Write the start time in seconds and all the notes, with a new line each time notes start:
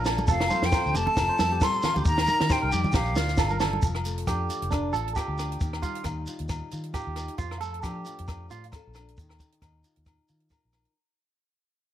Already playing: A#1 A#2 F4 A#4
0.05 A#3 D4 A4, snare, low agogo, shekere
0.17 high conga, shekere
0.27 F1 F3 A3 A4 F5, kick, shekere
0.31 C4 F4 A4
0.40 snare, low agogo, shekere
0.50 C4 C5, high conga, shekere
0.62 F2 G5, snare, shekere
0.72 C5, kick, snare, low agogo, shekere
0.76 F4
0.85 D2, shekere
0.94 F1 A3 C4 G4 A5, low conga, shekere
1.06 A4, low conga
1.17 F1 F4, kick, snare, low agogo, shekere
1.29 C5
1.39 F2 C4 A4, snare, high conga, shekere
1.52 G4
1.61 G3 A4 C6, kick, snare, low agogo, shekere
1.73 shekere
1.82 F3 F4, snare, low conga, low agogo, shekere
1.96 D2 G4, high conga, shekere
2.05 D#2 D#3 A#5, kick, shekere
2.18 snare, low agogo, shekere
2.27 D#4 A#4, high conga, shekere
2.40 D#3, snare, shekere
2.49 G4 C5 G5, kick, snare, low agogo, shekere
2.62 C2 A#4
2.72 F2 G3 D#4 G4, shekere
2.84 high conga, low conga, shekere
2.92 A#1 A#2 G4 F5, kick, snare, low agogo, shekere
3.05 shekere
3.15 D2 D4 F4, snare, high conga, shekere
3.28 snare, shekere
3.37 G1 F4 A4, kick, snare, low agogo, shekere
3.50 A#4, high conga, shekere
3.60 A#3 D4 A4, snare, low conga, low agogo, shekere
3.73 high conga
3.82 F1 F3, kick, closed hi-hat, shekere
3.95 cross-stick, low agogo
4.05 A3, closed hi-hat, shekere
4.18 closed hi-hat
4.27 F2 D4 G4, kick, cross-stick, closed hi-hat, low agogo, shekere
4.50 F4, closed hi-hat, shekere
4.62 F1, closed hi-hat
4.71 D4, kick, cross-stick, closed hi-hat, low agogo, shekere
4.93 A1 F4 A4, closed hi-hat, shekere
5.08 closed hi-hat
5.16 F4 G4, kick, cross-stick, closed hi-hat, low agogo, shekere
5.28 D2
5.38 D4, cross-stick, closed hi-hat, low agogo, shekere
5.52 closed hi-hat
5.60 D#2 D#3, kick, closed hi-hat, shekere
5.73 cross-stick, low agogo
5.82 G3 F4, kick, closed hi-hat, shekere
5.95 closed hi-hat
6.04 D#2 D#4, kick, cross-stick, closed hi-hat, low agogo, shekere
6.27 F4, closed hi-hat, shekere
6.39 D#2, closed hi-hat
6.49 D#4, kick, cross-stick, closed hi-hat, low agogo, shekere
6.71 D#3 F4, closed hi-hat, shekere
6.83 closed hi-hat
6.94 F4 G4, kick, cross-stick, closed hi-hat, low agogo, shekere
7.07 D#2
7.16 D#4, cross-stick, closed hi-hat, low agogo, shekere
7.28 closed hi-hat
7.38 F2 F3 F4, kick, closed hi-hat, shekere
7.51 cross-stick, low agogo
7.61 A3 A4, closed hi-hat, shekere
7.74 closed hi-hat
7.83 F3 D4 G4, kick, cross-stick, closed hi-hat, low agogo, shekere
8.05 F4, closed hi-hat, shekere
8.19 F2, closed hi-hat
8.28 D4, kick, cross-stick, closed hi-hat, low agogo, shekere
8.50 A2 D4 F4, closed hi-hat, shekere
8.64 closed hi-hat
8.72 A4, kick, cross-stick, closed hi-hat, low agogo, shekere
8.87 A#1
8.94 cross-stick, closed hi-hat, low agogo, shekere
8.98 D4
9.08 closed hi-hat
9.17 D#2 D#3, kick, closed hi-hat, shekere
9.29 cross-stick, low agogo
9.39 muted nylon-string guitar stroke, kick, closed hi-hat, shekere
9.52 closed hi-hat
9.62 D#2 D#4, kick, cross-stick, closed hi-hat, low agogo, shekere
9.84 F4, closed hi-hat, shekere
9.96 D#2, closed hi-hat
10.06 D#4, kick, cross-stick, closed hi-hat, low agogo, shekere
10.28 D#3 F4, closed hi-hat, shekere
10.40 closed hi-hat
10.50 A#4, kick, cross-stick, closed hi-hat, low agogo, shekere
10.65 A#1
10.73 D#4, cross-stick, closed hi-hat, low agogo, shekere
10.85 closed hi-hat